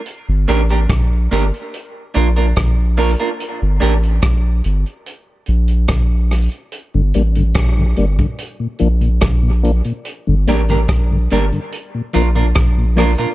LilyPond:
<<
  \new Staff \with { instrumentName = "Clean electric guitar" } { \time 4/4 \key g \minor \tempo 4 = 72 r8 <bes d' g' bes'>16 <bes d' g' bes'>16 r8 <bes d' g' bes'>16 r8. <bes d' f' bes'>16 <bes d' f' bes'>16 r8 <bes d' f' bes'>16 <bes d' f' bes'>16 | r8 <bes d' g' bes'>16 r2. r16 | r1 | r8 <bes d' g' bes'>16 <bes d' g' bes'>16 r8 <bes d' g' bes'>16 r8. <bes d' f' bes'>16 <bes d' f' bes'>16 r8 <bes d' f' bes'>16 <bes d' f' bes'>16 | }
  \new Staff \with { instrumentName = "Tonewheel organ" } { \clef bass \time 4/4 \key g \minor << { r1 | r1 | r8 <g bes d'>8 r8 <g bes d'>8 r8 <f bes d'>8 r8 <f bes d'>8 | r8 <g bes d'>8 r8 <g bes d'>8 r8 <f bes d'>8 r8 <f bes d'>8 | } \\ { r1 | r1 | r16 <g, d>16 r16 <g, d>16 r16 <g, d>16 r16 <g, d>16 r16 bes,16 r16 bes,16 r16 bes,16 r16 bes,16 | r16 <g, d>16 r16 <g, d>16 r16 <g, d>16 r16 <g, d>16 r16 bes,16 r16 bes,16 r16 bes,16 r16 bes,16 | } >> }
  \new Staff \with { instrumentName = "Sub bass" } { \clef bass \time 4/4 \key g \minor r16 g,,16 a,,8 bes,,8 g,,16 r8. bes,,8 bes,,8. r16 | r16 g,,16 a,,8 bes,,8 g,,16 r8. bes,,8 bes,,8. r16 | r16 g,,16 a,,8 bes,,8 g,,16 r8. bes,,8 bes,,8. r16 | r16 g,,16 a,,8 bes,,8 g,,16 r8. bes,,8 bes,,8. r16 | }
  \new DrumStaff \with { instrumentName = "Drums" } \drummode { \time 4/4 hh8 hh16 hh16 <hh bd ss>8 hh16 hh16 hh8 hh16 hh16 <hh bd ss>8 hho16 hh16 | hh8 hh16 hh16 <hh bd ss>8 hh16 hh16 hh8 hh16 hh16 <hh bd ss>8 <hho ss>16 hh16 | hh8 hh16 hh16 <hh bd ss>8 hh16 <hh bd>16 hh8 hh16 hh16 <hh bd ss>8 hh16 hh16 | hh8 hh16 hh16 <hh bd ss>8 hh16 hh16 hh8 hh16 hh16 <hh bd ss>8 <hho ss>16 hh16 | }
>>